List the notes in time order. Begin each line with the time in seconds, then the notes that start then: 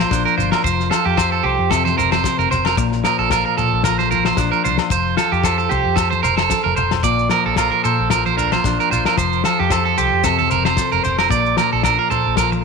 Already playing: A#2 F3 F4 C5
0.00 C5, high conga, low agogo
0.11 A#1 D4, kick, snare, maracas
0.25 A#4, maracas
0.37 G1 F4 C5, low conga, maracas
0.52 A#4, snare, low agogo
0.63 F1 C5, muted clean electric guitar stroke, kick, maracas
0.80 snare, maracas
0.91 F4 A4, snare, high conga, low agogo, maracas
1.05 F2 G4
1.17 C5, kick, snare, low agogo, maracas
1.32 A4
1.43 C2 G4 C5
1.59 F2
1.71 C3 A4, kick, snare, low agogo, maracas
1.85 C5, snare, high conga, maracas
1.98 F1 A#4 C5, low conga, maracas
2.12 C5, snare, high conga, low agogo
2.24 kick, snare, maracas
2.39 F1 A#4, maracas
2.51 F1 C5, snare, low conga, maracas
2.65 A#4, snare, low agogo
2.77 A#1 A#2, muted clean electric guitar stroke, kick, maracas
2.92 snare, maracas
3.04 F3 A#4, snare, high conga, low agogo, maracas
3.19 A#1 A4
3.30 F4 A#4, kick, snare, low agogo, maracas
3.45 A#4
3.57 A#2 A4, low conga, maracas
3.73 A#1
3.84 F3 A#4, kick, snare, low agogo, maracas
3.99 C5, snare, high conga, maracas
4.11 F4 A#4, low conga, maracas
4.25 C5, snare, high conga, low agogo
4.37 A#1 D4, kick, snare, maracas
4.52 A#4, maracas
4.64 C2 F4 C5, low conga, maracas
4.78 muted clean electric guitar stroke, snare, low agogo
4.90 F1 C5, muted clean electric guitar stroke, kick, maracas
5.17 F4 A4, snare, high conga, low agogo, maracas
5.32 F2 G4, maracas
5.44 A4 C5, kick, snare, low agogo, maracas
5.58 A4, maracas
5.69 C2 G4 C5, low conga, maracas
5.85 F2
5.96 A4, muted clean electric guitar stroke, kick, snare, low agogo, maracas
6.11 C5, high conga, maracas
6.23 F1 A#4 C5, low conga, maracas
6.37 A4, snare, high conga, low agogo
6.50 A4, kick, snare, high conga, maracas
6.64 F1 A#4, high conga
6.76 F1 C5, low conga, maracas
6.91 snare, low conga, low agogo
7.03 A#1 A#2 D5, kick, maracas
7.19 maracas
7.30 F3 A#4, snare, high conga, low agogo, maracas
7.46 A#1 A4
7.56 F4 A#4, kick, snare, low agogo, maracas
7.72 A#4
7.84 A#2 A4 C5, maracas
8.00 A#1
8.10 F3 A#4, kick, snare, low agogo, maracas
8.26 C5, high conga, maracas
8.37 D4 A#4, low conga, maracas
8.52 F4 C5, snare, high conga, low agogo
8.64 A#1 D4, kick, snare, maracas
8.80 A#4, maracas
8.91 A#1 F4 C5, low conga, maracas
9.05 A#4, snare, low agogo
9.17 F1 F3 C5, kick, maracas
9.33 maracas
9.44 F4 A4, snare, high conga, low agogo, maracas
9.59 F2 G4
9.70 A4 C5, kick, snare, low agogo, maracas
9.85 A4
9.98 C2 G4 C5, low conga, maracas
10.13 F2
10.24 C3 A4, kick, snare, low agogo, maracas
10.38 A4, high conga, maracas
10.50 F1 A#4 C5, low conga, maracas
10.65 C5, snare, high conga, low agogo
10.77 A4, kick, snare, maracas
10.92 F1 A#4, maracas
11.03 F1 C5, low conga, maracas
11.18 A#4, snare, low agogo
11.29 A#1 A#2 D5, kick, maracas
11.46 maracas
11.56 F3 A#4, snare, high conga, low agogo, maracas
11.73 A#1 A4
11.83 D4 A#4, kick, snare, low agogo, maracas
11.98 F4 A#4
12.10 A#2 A4 C5, low conga, maracas
12.26 A#1
12.36 F3 A#4, kick, snare, low agogo, maracas
12.52 muted clean electric guitar stroke, high conga, maracas